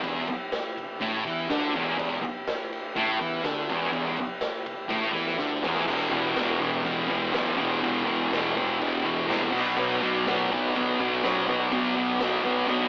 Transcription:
Already playing: G4 B4 E5
0.03 E1 E2, kick, ride
0.27 muted fingered electric bass stroke, muted distorted electric guitar stroke, ride
0.52 snare, ride, tambourine
0.77 kick, ride
1.01 A1 A2, kick, ride
1.25 E2 E3, ride
1.49 D2 D3, snare, ride, tambourine
1.74 E1 E2, ride
1.98 E1 E2 G4 B4 E5, kick, ride
2.21 muted distorted electric guitar stroke, muted fingered electric bass stroke, kick, ride
2.47 snare, ride, tambourine
2.73 ride
2.96 A1 A2, kick, ride
3.19 E2 E3, ride
3.43 D2 D3, snare, ride, tambourine
3.69 E1 E2, ride
3.92 E1 E2, kick, ride
4.17 muted fingered electric bass stroke, muted distorted electric guitar stroke, ride
4.41 snare, ride, tambourine
4.66 kick, ride
4.89 A1 A2, kick, snare
5.12 E2 E3, snare
5.27 snare
5.37 D2 D3, snare, tambourine
5.61 E1 E2, snare
5.75 snare
5.87 E1 E2 B2 E3 G4, kick, crash
5.92 B4 E5
6.09 E1 E2 B2 E3
6.34 E1 E2 B2 E3, snare, tambourine, crash
6.60 E1 E2 B2 E3, kick
6.84 A1 E2 B2 E3, kick, crash
7.08 E1 E2 B2 E3, kick
7.31 B1 E2 B2 E3, snare, tambourine, crash
7.57 E1 E2 B2 E3
7.81 E1 E2 B2 E3, kick, crash
8.06 E1 E2 B2 E3
8.32 E1 E2 B2 E3, snare, tambourine, crash
8.56 E1 E2 B2 E3, kick
8.79 E1 E2 B2 E3, kick, crash
9.03 E1 E2 B2 E3, kick
9.27 C2 E2 B2 E3, snare, tambourine, crash
9.51 B1 B2 F#3 B3 F#4 B4, kick
9.56 D5, crash
9.77 B1 B2 F#3 B3, crash
10.01 B1 B2 F#3 B3
10.26 B1 B2 F#3 B3, snare, tambourine, crash
10.51 B1 B2 F#3 B3, kick
10.75 E2 B2 F#3 B3, kick, crash
10.99 B1 B2 F#3 B3, kick
11.22 F#2 B2 F#3 B3, snare, tambourine, crash
11.47 B1 B2 F#3 B3
11.72 B1 B2 F#3 B3, kick, crash
11.96 B1 B2 F#3 B3
12.20 B1 B2 F#3 B3, snare, tambourine, crash
12.43 B1 B2 F#3 B3, kick
12.68 B1 B2 F#3 B3, kick, crash

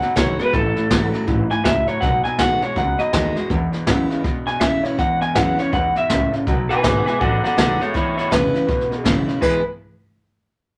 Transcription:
Already playing: F#2 F#5
0.02 B2 F#3, muted upright bass stroke, snare
0.16 B1 B2 D#3 G#3 A3 B3 F#4 C#5, kick, snare, hi-hat pedal
0.39 B2 G#3 B3 F#4 B4, muted upright bass stroke, snare
0.53 A1 A2 E3 A4, kick, snare
0.76 A2 E3, muted upright bass stroke, snare
0.89 G#1 A2 E3 F#3 A3 C#4 E4, kick, snare, hi-hat pedal
1.13 A2 F#3 C#4 E4, muted upright bass stroke, snare
1.27 A1 G#2 A2 E3, kick, snare
1.50 A2 E3 G#5, muted upright bass stroke, snare
1.64 C#2 A2 F#3 E5, kick, snare, hi-hat pedal
1.87 A2 F#3 C#5, muted upright bass stroke, snare
2.01 B1 B2 F#3 F#5, kick, snare
2.24 B2 F#3 G#5, muted upright bass stroke, snare
2.38 A1 B2 D#3 G#3 A3 B3 F#4 F#5, kick, snare, hi-hat pedal
2.61 B2 G#3 B3 F#4 C#5, muted upright bass stroke, snare
2.75 C#2 F#2 B2 F#3 F#5, kick, snare
2.98 B2 F#3 D#5, muted upright bass stroke, snare
3.13 D#2 B2 D#3 G#3 A3 B3 F#4, kick, snare, hi-hat pedal
3.36 B2 G#3 B3 F#4, muted upright bass stroke, snare
3.49 E2 B2, kick, snare
3.72 E2 B2, muted upright bass stroke, snare
3.86 E2 F#2 C#3 E3 G#3 B3 E4, kick, snare, hi-hat pedal
4.10 E2 C#3, muted upright bass stroke, snare
4.24 E2 G#2 B2, kick, snare
4.46 E2 B2 G#5, muted upright bass stroke, snare
4.60 E2 C#3 E3 G#3 B3 E4 E5, kick, snare, hi-hat pedal
4.83 E2 C#3 B3 E4 C#5, muted upright bass stroke, snare
4.97 E2 G#2 B2 F#5, kick, snare
5.21 E2 B2 G#5, muted upright bass stroke, snare
5.35 E2 F#2 C#3 E3 G#3 B3 E4 F#5, kick, snare, hi-hat pedal
5.58 E2 C#3 B3 E4 C#5, muted upright bass stroke, snare
5.72 E2 G#2 B2 F#5, kick, snare
5.96 E2 B2 E5, muted upright bass stroke, snare
6.10 C#2 E2 A2 C#3, kick, snare, hi-hat pedal
6.32 E2 C#3, muted upright bass stroke, snare
6.47 B1 B2 F#3, kick, snare
6.69 B2 F#3 B4 G#5, muted upright bass stroke, snare
6.83 G#1 B2 D#3 G#3 A3 B3 F#4 B4 G#5, kick, snare, hi-hat pedal
7.06 B2 G#3 B3 F#4 B4 G#5, muted upright bass stroke, snare
7.20 A1 F#2 B2 F#3 A4 F#5, kick, snare
7.43 B2 F#3 A4 F#5, muted upright bass stroke, snare
7.57 B1 B2 D#3 G#3 A3 B3 F#4 A4 F#5, kick, snare, hi-hat pedal
7.80 B2 G#3 B3 F#4 A4 C#5, muted upright bass stroke, snare
7.94 E2 B2 E4 C#5, kick, snare
8.17 E2 B2 E4 C#5, muted upright bass stroke, snare
8.31 E1 E2 C#3 E3 G#3 B3 E4 B4, kick, snare, hi-hat pedal
8.53 E2 C#3 B3 E4, muted upright bass stroke, snare
8.67 G#1 E2 B2, kick, snare
8.81 snare
8.90 E2 B2, muted upright bass stroke, snare
9.04 F#1 E2 C#3 E3 G#3 B3 E4, kick, snare, hi-hat pedal
9.26 E2 C#3 B3 E4, muted upright bass stroke, snare
9.41 E2 B2 E3 G#3 B3 E4 G#4 B4, kick, crash

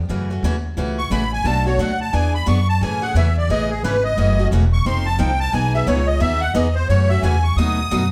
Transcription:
0.09 F#2 C#3 E3 A3 C#4 F#4
0.30 A3 C#4 F#4
0.43 D#2 C#3 E3 A3 C#4 F#4
0.77 C#2 C#3 E3 A3 C#4 F#4
0.98 C#6
1.10 A1 C#3 E3 A3 C#4 F#4 B5
1.33 G#5
1.44 B1 B2 F#3 A3 D4 F#4 A5
1.66 A3 D4 F#4 C#5
1.78 D2 B2 F#3 A3 D4 F#4 F#5
2.01 A5
2.13 E2 E3 B3 D4 G#4 G#5
2.35 B5
2.46 F#2 E3 B3 D4 G#4 C#6
2.69 A5
2.81 A2 C#3 E3 A3 C#4 G#4 G#5
3.02 A3 C#4 G#4 F#5
3.14 E2 C#3 E3 A3 C#4 G#4 E5
3.38 D5
3.49 A1 C#3 E3 A3 C#4 G#4 D#5
3.70 G#4
3.83 G#1 C#3 E3 A3 C#4 G#4 B4
4.04 D#5
4.17 F#1 C#3 E3 A3 C#4 F#4
4.39 A3 C#4 F#4
4.51 E1 C#3 E3 A3 C#4 F#4
4.73 C#6
4.85 F1 F3 C4 D#4 A4 C6
5.06 A5
5.19 C2 F3 C4 D#4 A4 G5
5.40 A5
5.53 B1 E3 B3 D#4 G#4 G#5
5.75 B3 D#4 G#4 E5
5.87 C#2 E3 B3 D#4 G#4 C#5
6.07 D#5
6.20 D#2 E3 B3 D#4 G#4 E5
6.41 F#5
6.54 E2 E3 B3 D#4 G#4 D#5
6.75 C5
6.89 F#2 C#3 E3 A3 C#4 F#4 C#5
7.09 A3 C#4 F#4 E5
7.22 E2 C#3 E3 A3 C#4 F#4 G#5
7.44 C#6
7.56 D#2 B2 F#3 A3 D#4 F#4 D#6
7.91 F#2 B2 F#3 A3 D#4 F#4

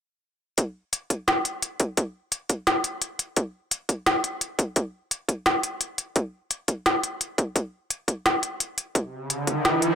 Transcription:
0.58 kick, closed hi-hat
0.93 closed hi-hat
1.10 kick, closed hi-hat
1.28 snare, closed hi-hat
1.45 closed hi-hat
1.62 closed hi-hat
1.80 kick, closed hi-hat
1.97 kick, closed hi-hat
2.32 closed hi-hat
2.50 kick, closed hi-hat
2.67 snare, closed hi-hat
2.84 closed hi-hat
3.02 closed hi-hat
3.19 closed hi-hat
3.37 kick, closed hi-hat
3.71 closed hi-hat
3.89 kick, closed hi-hat
4.06 snare, closed hi-hat
4.24 closed hi-hat
4.41 closed hi-hat
4.59 kick, closed hi-hat
4.76 kick, closed hi-hat
5.11 closed hi-hat
5.29 kick, closed hi-hat
5.46 snare, closed hi-hat
5.63 closed hi-hat
5.81 closed hi-hat
5.98 closed hi-hat
6.16 kick, closed hi-hat
6.51 closed hi-hat
6.68 kick, closed hi-hat
6.86 snare, closed hi-hat
7.04 closed hi-hat
7.21 closed hi-hat
7.38 kick, closed hi-hat
7.56 kick, closed hi-hat
7.90 closed hi-hat
8.08 kick, closed hi-hat
8.26 snare, closed hi-hat
8.43 closed hi-hat
8.60 closed hi-hat
8.78 closed hi-hat
8.95 kick, closed hi-hat, riser
9.30 closed hi-hat
9.47 kick, closed hi-hat
9.65 snare, closed hi-hat
9.82 closed hi-hat

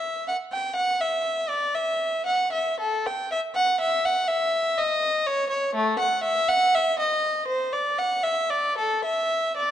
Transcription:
Already playing: E5
0.28 F#5
0.52 G5
0.76 F#5
1.00 E5
1.49 D5
1.75 E5
2.26 F#5
2.52 E5
2.80 A4
3.06 G5
3.32 E5
3.55 F#5
3.80 E5
4.05 F#5
4.28 E5
4.78 D#5
5.27 C#5
5.49 C#5
5.75 A3
5.99 F#5
6.24 E5
6.48 F#5
6.75 E5
6.99 D#5
7.48 C5
7.73 D5
7.99 F#5
8.23 E5
8.50 D5
8.78 A4
9.05 E5
9.57 D5

